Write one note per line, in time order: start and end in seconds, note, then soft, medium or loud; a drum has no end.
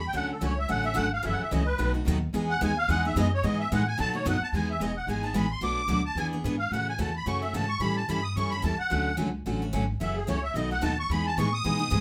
0.00 0.13 E2 medium
0.07 0.15 G5 medium
0.13 0.41 D2 medium
0.13 0.32 D3 medium
0.13 0.33 F#3 medium
0.13 0.32 A3 medium
0.13 0.33 C#4 medium
0.13 0.33 F#4 medium
0.13 0.33 A4 medium
0.13 0.30 F#5 medium
0.32 0.43 A4 medium
0.41 0.68 C#2 medium
0.41 0.52 D3 medium
0.41 0.52 F#3 medium
0.41 0.52 A3 medium
0.41 0.52 C#4 medium
0.41 0.53 F#4 medium
0.41 0.52 A4 medium
0.41 0.58 C#5 medium
0.59 0.70 E5 medium
0.68 0.96 A1 medium
0.68 0.84 D3 medium
0.68 0.84 F#3 medium
0.68 0.84 A3 medium
0.68 0.84 C#4 medium
0.68 0.82 F#4 medium
0.68 0.88 A4 medium
0.68 0.85 F#5 medium
0.83 0.93 A3 soft
0.83 0.94 C#4 soft
0.83 0.93 F#4 medium
0.83 0.97 E5 medium
0.94 1.24 G#1 medium
0.94 1.06 D3 medium
0.94 1.06 F#3 medium
0.94 1.06 A3 medium
0.94 1.06 C#4 medium
0.94 1.06 F#4 loud
0.94 1.07 A4 loud
0.94 1.11 F#5 medium
1.13 1.25 F5 medium
1.23 1.39 F#1 medium
1.23 1.42 C#3 medium
1.23 1.42 E3 medium
1.23 1.43 F#3 medium
1.23 1.42 A3 medium
1.23 1.42 C#4 medium
1.23 1.43 E4 medium
1.23 1.42 F#4 medium
1.23 1.43 A4 medium
1.23 1.34 E5 medium
1.32 1.42 F#5 medium
1.40 1.51 E5 medium
1.40 muted upright bass stroke soft
1.51 1.78 C#2 medium
1.51 1.62 C#3 medium
1.51 1.62 E3 medium
1.51 1.62 F#3 medium
1.51 1.62 A3 medium
1.51 1.62 C#4 medium
1.51 1.62 E4 medium
1.51 1.62 F#4 medium
1.51 1.62 A4 medium
1.51 1.67 D#5 medium
1.66 1.92 B4 medium
1.78 2.06 B1 medium
1.78 1.94 B2 medium
1.78 1.97 D#3 medium
1.78 1.94 F#3 medium
1.78 1.94 A3 medium
1.78 1.98 B3 medium
1.78 1.94 D#4 medium
1.78 1.93 F#4 medium
1.78 1.98 A4 medium
1.94 2.07 A3 soft
1.94 2.06 D#4 medium
1.94 2.06 F#4 medium
2.06 2.33 D#2 medium
2.06 2.18 B2 medium
2.06 2.16 D#3 medium
2.06 2.17 F#3 medium
2.06 2.17 A3 medium
2.06 2.17 B3 medium
2.06 2.17 D#4 loud
2.06 2.18 F#4 loud
2.06 2.17 A4 loud
2.34 2.61 E2 medium
2.34 2.52 E3 medium
2.34 2.52 G#3 medium
2.34 2.53 B3 medium
2.34 2.53 D#4 medium
2.34 2.53 G#4 medium
2.50 2.61 F#5 medium
2.61 2.88 D#2 medium
2.61 2.71 E3 medium
2.61 2.72 G#3 medium
2.61 2.71 B3 loud
2.61 2.72 D#4 medium
2.61 2.72 G#4 medium
2.61 2.78 G#5 medium
2.78 2.89 F5 medium
2.89 3.15 E2 medium
2.89 3.04 E3 medium
2.89 3.04 G#3 medium
2.89 3.04 B3 medium
2.89 3.04 D#4 medium
2.89 3.04 G#4 medium
2.89 3.04 F#5 loud
3.05 3.17 B3 soft
3.05 3.16 D#4 medium
3.05 3.16 G#4 medium
3.05 3.17 E5 medium
3.16 3.42 F#2 medium
3.16 3.26 E3 medium
3.16 3.27 G#3 medium
3.16 3.27 B3 loud
3.16 3.27 D#4 medium
3.16 3.27 G#4 loud
3.16 3.32 D#5 medium
3.34 3.45 C#5 medium
3.43 3.70 G#2 medium
3.43 3.62 E3 medium
3.43 3.62 G#3 medium
3.43 3.62 B3 medium
3.43 3.62 D#4 medium
3.43 3.62 G#4 medium
3.43 3.59 D#5 medium
3.60 3.71 E5 medium
3.72 3.98 A2 medium
3.72 3.81 E3 medium
3.72 3.82 G#3 medium
3.72 3.82 B3 medium
3.72 3.82 D#4 loud
3.72 3.82 G#4 medium
3.72 3.87 F#5 medium
3.87 3.98 G#5 loud
3.98 4.13 B2 medium
3.98 4.25 B2 medium
3.98 4.17 D#3 medium
3.98 4.13 F#3 medium
3.98 4.13 A3 medium
3.98 4.17 B3 medium
3.98 4.13 D#4 medium
3.98 4.12 F#4 medium
3.98 4.17 A4 medium
3.98 4.14 A5 loud
4.14 4.25 A3 soft
4.14 4.25 D#4 medium
4.14 4.25 F#4 medium
4.14 4.26 C#5 medium
4.25 4.40 F#2 loud
4.25 4.36 B2 medium
4.25 4.35 D#3 medium
4.25 4.36 F#3 medium
4.25 4.36 A3 loud
4.25 4.36 B3 loud
4.25 4.36 D#4 medium
4.25 4.37 F#4 loud
4.25 4.36 A4 loud
4.25 4.42 F#5 medium
4.40 4.54 A5 loud
4.40 muted upright bass stroke soft
4.52 4.79 E2 medium
4.52 4.72 E3 medium
4.52 4.72 G#3 medium
4.52 4.72 B3 medium
4.52 4.73 D#4 medium
4.52 4.73 G#4 medium
4.52 4.69 G#5 medium
4.71 4.81 E5 medium
4.80 5.06 E1 medium
4.80 4.91 E3 medium
4.80 4.91 G#3 medium
4.80 4.91 B3 medium
4.80 4.91 D#4 medium
4.80 4.92 G#4 medium
4.80 4.96 D#5 medium
4.97 5.08 F#5 medium
5.07 5.33 G#1 medium
5.07 5.23 E3 medium
5.07 5.23 G#3 medium
5.07 5.23 B3 medium
5.07 5.23 D#4 medium
5.07 5.22 G#4 medium
5.07 5.23 G#5 medium
5.23 5.33 B3 soft
5.23 5.34 D#4 soft
5.23 5.34 G#4 medium
5.23 5.35 A5 medium
5.34 5.61 A1 medium
5.34 5.45 E3 medium
5.34 5.45 G#3 medium
5.34 5.45 B3 medium
5.34 5.45 D#4 medium
5.34 5.46 G#4 medium
5.34 5.51 B5 medium
5.51 5.62 C6 medium
5.61 5.87 B1 medium
5.61 5.81 B2 medium
5.61 5.80 F#3 medium
5.61 5.80 A3 medium
5.61 5.81 D4 medium
5.61 5.81 F#4 medium
5.61 5.81 B4 medium
5.61 6.03 D6 loud
5.88 6.15 D2 medium
5.88 5.99 B2 medium
5.88 5.99 F#3 medium
5.88 5.99 A3 medium
5.88 6.00 D4 medium
5.88 6.00 F#4 medium
5.88 6.00 B4 medium
6.06 6.17 A5 medium
6.15 6.43 E2 medium
6.15 6.32 E3 medium
6.15 6.33 B3 medium
6.15 6.32 D4 medium
6.15 6.32 G#4 medium
6.15 6.36 B4 medium
6.15 6.27 G#5 loud
6.33 6.44 B3 soft
6.33 6.45 D4 medium
6.33 6.44 G#4 medium
6.44 6.70 G#2 medium
6.44 6.55 E3 medium
6.44 6.55 B3 medium
6.44 6.55 D4 medium
6.44 6.55 G#4 medium
6.44 6.55 B4 loud
6.59 6.71 F5 medium
6.71 6.98 A2 medium
6.71 6.91 C#3 medium
6.71 6.91 E3 medium
6.71 6.91 A3 medium
6.71 6.91 C#4 medium
6.71 6.92 F#4 medium
6.71 6.90 A4 medium
6.71 6.87 F#5 medium
6.89 7.00 G#5 medium
6.98 7.25 E2 medium
6.98 7.09 C#3 medium
6.98 7.09 E3 medium
6.98 7.09 A3 medium
6.98 7.09 C#4 medium
6.98 7.09 F#4 medium
6.98 7.10 A4 medium
6.98 7.15 A5 medium
7.16 7.27 B5 medium
7.26 7.53 F#2 medium
7.26 7.41 C#3 medium
7.26 7.42 E3 medium
7.26 7.42 A3 medium
7.26 7.41 C#4 medium
7.26 7.41 F#4 medium
7.26 7.45 A4 medium
7.26 7.42 C#6 medium
7.41 7.53 A3 soft
7.41 7.54 C#4 soft
7.41 7.54 F#4 medium
7.41 7.54 E5 medium
7.53 7.79 G#2 medium
7.53 7.64 C#3 medium
7.53 7.64 E3 medium
7.53 7.65 A3 medium
7.53 7.65 C#4 medium
7.53 7.65 F#4 medium
7.53 7.65 A4 medium
7.53 7.70 A5 medium
7.69 7.81 C#6 loud
7.79 8.07 A2 medium
7.79 7.99 E3 medium
7.79 8.00 G3 medium
7.79 7.99 C#4 medium
7.79 7.99 E4 medium
7.79 8.00 A4 medium
7.79 7.96 B5 medium
7.97 8.09 A5 medium
8.09 8.35 G2 medium
8.09 8.19 E3 medium
8.09 8.19 G3 medium
8.09 8.20 C#4 medium
8.09 8.19 E4 medium
8.09 8.19 A4 medium
8.09 8.24 B5 medium
8.23 8.36 D#6 loud
8.36 8.63 F#2 medium
8.36 8.51 E3 medium
8.36 8.52 G3 medium
8.36 8.52 C#4 medium
8.36 8.51 E4 medium
8.36 8.51 A4 medium
8.36 8.51 C#6 medium
8.50 8.62 C#4 soft
8.50 8.62 E4 soft
8.50 8.63 A4 medium
8.50 8.63 B5 medium
8.62 8.78 E2 medium
8.62 8.73 E3 medium
8.62 8.73 G3 medium
8.62 8.74 C#4 medium
8.62 8.74 E4 medium
8.62 8.74 A4 medium
8.62 8.79 A5 medium
8.79 9.16 F#5 medium
8.79 muted upright bass stroke soft
8.90 9.18 D2 medium
8.90 9.09 D3 medium
8.90 9.09 F#3 medium
8.90 9.10 A3 medium
8.90 9.10 C#4 medium
8.90 9.10 F#4 medium
8.90 9.10 A4 medium
9.17 9.45 C#2 medium
9.17 9.28 D3 medium
9.17 9.28 F#3 medium
9.17 9.28 A3 medium
9.17 9.28 C#4 medium
9.17 9.28 F#4 medium
9.17 9.29 A4 medium
9.46 9.73 A1 medium
9.46 9.61 D3 medium
9.46 9.61 F#3 medium
9.46 9.61 A3 medium
9.46 9.61 C#4 medium
9.46 9.61 F#4 medium
9.46 9.65 A4 medium
9.62 9.72 A3 soft
9.62 9.72 C#4 soft
9.62 9.72 F#4 medium
9.73 10.00 G#1 medium
9.73 9.83 D3 medium
9.73 9.83 F#3 medium
9.73 9.83 A3 medium
9.73 9.83 C#4 loud
9.73 9.84 F#4 loud
9.73 9.85 A4 loud
10.00 10.27 F#1 medium
10.00 10.19 C#3 medium
10.00 10.19 E3 medium
10.00 10.19 F#3 medium
10.00 10.19 A3 medium
10.00 10.19 C#4 medium
10.00 10.19 E4 medium
10.00 10.19 F#4 medium
10.00 10.19 A4 medium
10.00 10.16 E5 medium
10.16 10.28 G#4 medium
10.27 10.53 C#2 medium
10.27 10.38 C#3 medium
10.27 10.38 E3 medium
10.27 10.38 F#3 medium
10.27 10.38 A3 medium
10.27 10.38 C#4 medium
10.27 10.39 E4 medium
10.27 10.38 F#4 medium
10.27 10.38 A4 medium
10.27 10.43 C#5 medium
10.43 10.55 E5 medium
10.54 10.81 B1 medium
10.54 10.70 B2 medium
10.54 10.74 D#3 medium
10.54 10.71 F#3 medium
10.54 10.70 A3 medium
10.54 10.74 B3 medium
10.54 10.71 D#4 medium
10.54 10.70 F#4 medium
10.54 10.74 A4 medium
10.54 10.70 D#5 medium
10.71 10.81 A3 soft
10.71 10.81 D#4 soft
10.71 10.81 F#4 medium
10.71 10.83 F#5 medium
10.81 11.09 D#2 medium
10.81 10.92 B2 medium
10.81 10.93 D#3 medium
10.81 10.92 F#3 medium
10.81 10.93 A3 medium
10.81 10.93 B3 loud
10.81 10.93 D#4 medium
10.81 10.93 F#4 medium
10.81 10.93 A4 medium
10.81 10.98 A5 medium
10.99 11.10 C#6 loud
11.09 11.36 E2 medium
11.09 11.29 E3 medium
11.09 11.29 G#3 medium
11.09 11.29 B3 medium
11.09 11.29 D#4 medium
11.09 11.29 G#4 medium
11.09 11.26 B5 medium
11.27 11.38 A5 loud
11.37 11.64 A2 medium
11.37 11.48 E3 medium
11.37 11.48 G#3 medium
11.37 11.48 B3 medium
11.37 11.48 D#4 medium
11.37 11.49 G#4 medium
11.37 11.53 C#6 medium
11.53 12.01 D#6 loud
11.64 11.91 B2 medium
11.64 11.79 E3 medium
11.64 11.80 G#3 medium
11.64 11.78 B3 medium
11.64 11.78 D#4 medium
11.64 11.78 G#4 medium
11.79 11.90 B3 soft
11.79 11.90 D#4 soft
11.79 11.90 G#4 medium
11.90 12.01 G#2 loud
11.90 12.01 E3 medium
11.90 12.01 G#3 medium
11.90 12.01 B3 medium
11.90 12.01 D#4 medium
11.90 12.01 G#4 loud